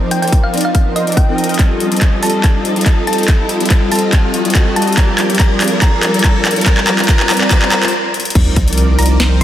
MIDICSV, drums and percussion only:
0, 0, Header, 1, 2, 480
1, 0, Start_track
1, 0, Key_signature, -3, "minor"
1, 0, Tempo, 422535
1, 1811, Time_signature, 4, 2, 24, 8
1, 10722, End_track
2, 0, Start_track
2, 0, Title_t, "Drums"
2, 128, Note_on_c, 9, 42, 63
2, 241, Note_off_c, 9, 42, 0
2, 256, Note_on_c, 9, 42, 47
2, 313, Note_off_c, 9, 42, 0
2, 313, Note_on_c, 9, 42, 58
2, 369, Note_on_c, 9, 36, 99
2, 370, Note_off_c, 9, 42, 0
2, 370, Note_on_c, 9, 42, 72
2, 483, Note_off_c, 9, 36, 0
2, 483, Note_off_c, 9, 42, 0
2, 609, Note_on_c, 9, 42, 44
2, 653, Note_off_c, 9, 42, 0
2, 653, Note_on_c, 9, 42, 57
2, 689, Note_off_c, 9, 42, 0
2, 689, Note_on_c, 9, 42, 76
2, 803, Note_off_c, 9, 42, 0
2, 848, Note_on_c, 9, 42, 70
2, 849, Note_on_c, 9, 36, 94
2, 962, Note_off_c, 9, 42, 0
2, 963, Note_off_c, 9, 36, 0
2, 1091, Note_on_c, 9, 42, 58
2, 1204, Note_off_c, 9, 42, 0
2, 1218, Note_on_c, 9, 42, 46
2, 1273, Note_off_c, 9, 42, 0
2, 1273, Note_on_c, 9, 42, 61
2, 1329, Note_on_c, 9, 36, 94
2, 1330, Note_off_c, 9, 42, 0
2, 1330, Note_on_c, 9, 42, 73
2, 1443, Note_off_c, 9, 36, 0
2, 1444, Note_off_c, 9, 42, 0
2, 1570, Note_on_c, 9, 42, 46
2, 1633, Note_off_c, 9, 42, 0
2, 1633, Note_on_c, 9, 42, 60
2, 1696, Note_off_c, 9, 42, 0
2, 1696, Note_on_c, 9, 42, 47
2, 1751, Note_off_c, 9, 42, 0
2, 1751, Note_on_c, 9, 42, 59
2, 1808, Note_off_c, 9, 42, 0
2, 1808, Note_on_c, 9, 39, 48
2, 1808, Note_on_c, 9, 42, 74
2, 1809, Note_on_c, 9, 36, 92
2, 1922, Note_off_c, 9, 39, 0
2, 1922, Note_off_c, 9, 42, 0
2, 1923, Note_off_c, 9, 36, 0
2, 2049, Note_on_c, 9, 42, 62
2, 2163, Note_off_c, 9, 42, 0
2, 2177, Note_on_c, 9, 42, 47
2, 2232, Note_off_c, 9, 42, 0
2, 2232, Note_on_c, 9, 42, 61
2, 2288, Note_off_c, 9, 42, 0
2, 2288, Note_on_c, 9, 39, 50
2, 2288, Note_on_c, 9, 42, 72
2, 2290, Note_on_c, 9, 36, 100
2, 2402, Note_off_c, 9, 39, 0
2, 2402, Note_off_c, 9, 42, 0
2, 2403, Note_off_c, 9, 36, 0
2, 2529, Note_on_c, 9, 46, 91
2, 2572, Note_on_c, 9, 42, 59
2, 2608, Note_off_c, 9, 42, 0
2, 2608, Note_on_c, 9, 42, 74
2, 2642, Note_off_c, 9, 46, 0
2, 2722, Note_off_c, 9, 42, 0
2, 2769, Note_on_c, 9, 39, 50
2, 2769, Note_on_c, 9, 42, 70
2, 2770, Note_on_c, 9, 36, 100
2, 2883, Note_off_c, 9, 39, 0
2, 2883, Note_off_c, 9, 42, 0
2, 2884, Note_off_c, 9, 36, 0
2, 3010, Note_on_c, 9, 42, 61
2, 3124, Note_off_c, 9, 42, 0
2, 3138, Note_on_c, 9, 42, 44
2, 3193, Note_off_c, 9, 42, 0
2, 3193, Note_on_c, 9, 42, 59
2, 3250, Note_off_c, 9, 42, 0
2, 3250, Note_on_c, 9, 36, 95
2, 3250, Note_on_c, 9, 39, 54
2, 3250, Note_on_c, 9, 42, 73
2, 3363, Note_off_c, 9, 36, 0
2, 3364, Note_off_c, 9, 39, 0
2, 3364, Note_off_c, 9, 42, 0
2, 3490, Note_on_c, 9, 42, 47
2, 3554, Note_off_c, 9, 42, 0
2, 3554, Note_on_c, 9, 42, 62
2, 3617, Note_off_c, 9, 42, 0
2, 3617, Note_on_c, 9, 42, 49
2, 3671, Note_off_c, 9, 42, 0
2, 3671, Note_on_c, 9, 42, 64
2, 3727, Note_off_c, 9, 42, 0
2, 3727, Note_on_c, 9, 39, 58
2, 3727, Note_on_c, 9, 42, 75
2, 3730, Note_on_c, 9, 36, 100
2, 3841, Note_off_c, 9, 39, 0
2, 3841, Note_off_c, 9, 42, 0
2, 3843, Note_off_c, 9, 36, 0
2, 3967, Note_on_c, 9, 42, 64
2, 4081, Note_off_c, 9, 42, 0
2, 4095, Note_on_c, 9, 42, 47
2, 4152, Note_off_c, 9, 42, 0
2, 4152, Note_on_c, 9, 42, 64
2, 4207, Note_off_c, 9, 42, 0
2, 4207, Note_on_c, 9, 39, 62
2, 4207, Note_on_c, 9, 42, 78
2, 4209, Note_on_c, 9, 36, 104
2, 4320, Note_off_c, 9, 39, 0
2, 4320, Note_off_c, 9, 42, 0
2, 4323, Note_off_c, 9, 36, 0
2, 4448, Note_on_c, 9, 46, 94
2, 4492, Note_on_c, 9, 42, 64
2, 4528, Note_off_c, 9, 42, 0
2, 4528, Note_on_c, 9, 42, 77
2, 4561, Note_off_c, 9, 46, 0
2, 4642, Note_off_c, 9, 42, 0
2, 4688, Note_on_c, 9, 39, 62
2, 4688, Note_on_c, 9, 42, 76
2, 4690, Note_on_c, 9, 36, 95
2, 4802, Note_off_c, 9, 39, 0
2, 4802, Note_off_c, 9, 42, 0
2, 4803, Note_off_c, 9, 36, 0
2, 4928, Note_on_c, 9, 42, 66
2, 5042, Note_off_c, 9, 42, 0
2, 5056, Note_on_c, 9, 42, 50
2, 5113, Note_off_c, 9, 42, 0
2, 5113, Note_on_c, 9, 42, 64
2, 5169, Note_on_c, 9, 36, 92
2, 5170, Note_off_c, 9, 42, 0
2, 5170, Note_on_c, 9, 39, 70
2, 5170, Note_on_c, 9, 42, 77
2, 5283, Note_off_c, 9, 36, 0
2, 5283, Note_off_c, 9, 39, 0
2, 5283, Note_off_c, 9, 42, 0
2, 5411, Note_on_c, 9, 42, 51
2, 5475, Note_off_c, 9, 42, 0
2, 5475, Note_on_c, 9, 42, 65
2, 5538, Note_off_c, 9, 42, 0
2, 5538, Note_on_c, 9, 42, 50
2, 5595, Note_off_c, 9, 42, 0
2, 5595, Note_on_c, 9, 42, 66
2, 5649, Note_on_c, 9, 36, 95
2, 5651, Note_off_c, 9, 42, 0
2, 5651, Note_on_c, 9, 39, 73
2, 5651, Note_on_c, 9, 42, 79
2, 5763, Note_off_c, 9, 36, 0
2, 5765, Note_off_c, 9, 39, 0
2, 5765, Note_off_c, 9, 42, 0
2, 5889, Note_on_c, 9, 39, 74
2, 5889, Note_on_c, 9, 42, 66
2, 6003, Note_off_c, 9, 39, 0
2, 6003, Note_off_c, 9, 42, 0
2, 6018, Note_on_c, 9, 42, 53
2, 6073, Note_off_c, 9, 42, 0
2, 6073, Note_on_c, 9, 42, 66
2, 6129, Note_off_c, 9, 42, 0
2, 6129, Note_on_c, 9, 36, 102
2, 6129, Note_on_c, 9, 39, 79
2, 6129, Note_on_c, 9, 42, 82
2, 6242, Note_off_c, 9, 39, 0
2, 6242, Note_off_c, 9, 42, 0
2, 6243, Note_off_c, 9, 36, 0
2, 6369, Note_on_c, 9, 39, 79
2, 6369, Note_on_c, 9, 46, 97
2, 6411, Note_on_c, 9, 42, 66
2, 6448, Note_off_c, 9, 42, 0
2, 6448, Note_on_c, 9, 42, 84
2, 6482, Note_off_c, 9, 39, 0
2, 6482, Note_off_c, 9, 46, 0
2, 6561, Note_off_c, 9, 42, 0
2, 6608, Note_on_c, 9, 39, 81
2, 6608, Note_on_c, 9, 42, 77
2, 6609, Note_on_c, 9, 36, 104
2, 6722, Note_off_c, 9, 39, 0
2, 6722, Note_off_c, 9, 42, 0
2, 6723, Note_off_c, 9, 36, 0
2, 6850, Note_on_c, 9, 39, 83
2, 6850, Note_on_c, 9, 42, 70
2, 6963, Note_off_c, 9, 39, 0
2, 6963, Note_off_c, 9, 42, 0
2, 6977, Note_on_c, 9, 42, 49
2, 7034, Note_off_c, 9, 42, 0
2, 7034, Note_on_c, 9, 42, 69
2, 7089, Note_on_c, 9, 36, 93
2, 7090, Note_on_c, 9, 39, 86
2, 7148, Note_off_c, 9, 42, 0
2, 7203, Note_off_c, 9, 36, 0
2, 7203, Note_off_c, 9, 39, 0
2, 7330, Note_on_c, 9, 39, 91
2, 7330, Note_on_c, 9, 42, 52
2, 7393, Note_off_c, 9, 42, 0
2, 7393, Note_on_c, 9, 42, 67
2, 7444, Note_off_c, 9, 39, 0
2, 7456, Note_off_c, 9, 42, 0
2, 7456, Note_on_c, 9, 42, 52
2, 7513, Note_off_c, 9, 42, 0
2, 7513, Note_on_c, 9, 42, 71
2, 7567, Note_off_c, 9, 42, 0
2, 7567, Note_on_c, 9, 39, 96
2, 7567, Note_on_c, 9, 42, 85
2, 7569, Note_on_c, 9, 36, 96
2, 7681, Note_off_c, 9, 39, 0
2, 7681, Note_off_c, 9, 42, 0
2, 7683, Note_off_c, 9, 36, 0
2, 7696, Note_on_c, 9, 39, 84
2, 7809, Note_off_c, 9, 39, 0
2, 7809, Note_on_c, 9, 39, 99
2, 7809, Note_on_c, 9, 42, 68
2, 7922, Note_off_c, 9, 39, 0
2, 7922, Note_off_c, 9, 42, 0
2, 7937, Note_on_c, 9, 39, 85
2, 7937, Note_on_c, 9, 42, 52
2, 7992, Note_off_c, 9, 42, 0
2, 7992, Note_on_c, 9, 42, 70
2, 8049, Note_off_c, 9, 39, 0
2, 8049, Note_off_c, 9, 42, 0
2, 8049, Note_on_c, 9, 36, 104
2, 8049, Note_on_c, 9, 39, 100
2, 8049, Note_on_c, 9, 42, 83
2, 8163, Note_off_c, 9, 36, 0
2, 8163, Note_off_c, 9, 39, 0
2, 8163, Note_off_c, 9, 42, 0
2, 8176, Note_on_c, 9, 39, 91
2, 8289, Note_off_c, 9, 39, 0
2, 8289, Note_on_c, 9, 39, 99
2, 8289, Note_on_c, 9, 46, 93
2, 8332, Note_on_c, 9, 42, 70
2, 8370, Note_off_c, 9, 42, 0
2, 8370, Note_on_c, 9, 42, 85
2, 8402, Note_off_c, 9, 39, 0
2, 8402, Note_off_c, 9, 46, 0
2, 8417, Note_on_c, 9, 39, 93
2, 8483, Note_off_c, 9, 42, 0
2, 8529, Note_on_c, 9, 36, 104
2, 8530, Note_off_c, 9, 39, 0
2, 8530, Note_on_c, 9, 39, 98
2, 8530, Note_on_c, 9, 42, 81
2, 8642, Note_off_c, 9, 36, 0
2, 8643, Note_off_c, 9, 39, 0
2, 8643, Note_off_c, 9, 42, 0
2, 8658, Note_on_c, 9, 39, 94
2, 8769, Note_off_c, 9, 39, 0
2, 8769, Note_on_c, 9, 39, 109
2, 8769, Note_on_c, 9, 42, 71
2, 8882, Note_off_c, 9, 39, 0
2, 8882, Note_off_c, 9, 42, 0
2, 8896, Note_on_c, 9, 39, 94
2, 8896, Note_on_c, 9, 42, 55
2, 8953, Note_off_c, 9, 42, 0
2, 8953, Note_on_c, 9, 42, 68
2, 9009, Note_off_c, 9, 39, 0
2, 9067, Note_off_c, 9, 42, 0
2, 9250, Note_on_c, 9, 42, 58
2, 9312, Note_off_c, 9, 42, 0
2, 9312, Note_on_c, 9, 42, 65
2, 9376, Note_off_c, 9, 42, 0
2, 9376, Note_on_c, 9, 42, 81
2, 9433, Note_off_c, 9, 42, 0
2, 9433, Note_on_c, 9, 42, 87
2, 9489, Note_on_c, 9, 36, 121
2, 9489, Note_on_c, 9, 49, 106
2, 9546, Note_off_c, 9, 42, 0
2, 9603, Note_off_c, 9, 36, 0
2, 9603, Note_off_c, 9, 49, 0
2, 9729, Note_on_c, 9, 42, 68
2, 9730, Note_on_c, 9, 36, 107
2, 9842, Note_off_c, 9, 42, 0
2, 9843, Note_off_c, 9, 36, 0
2, 9856, Note_on_c, 9, 42, 54
2, 9913, Note_off_c, 9, 42, 0
2, 9913, Note_on_c, 9, 42, 70
2, 9969, Note_off_c, 9, 42, 0
2, 9969, Note_on_c, 9, 42, 79
2, 10083, Note_off_c, 9, 42, 0
2, 10208, Note_on_c, 9, 46, 91
2, 10252, Note_on_c, 9, 42, 68
2, 10289, Note_off_c, 9, 42, 0
2, 10289, Note_on_c, 9, 42, 84
2, 10321, Note_off_c, 9, 46, 0
2, 10402, Note_off_c, 9, 42, 0
2, 10450, Note_on_c, 9, 38, 115
2, 10450, Note_on_c, 9, 42, 82
2, 10563, Note_off_c, 9, 38, 0
2, 10563, Note_off_c, 9, 42, 0
2, 10722, End_track
0, 0, End_of_file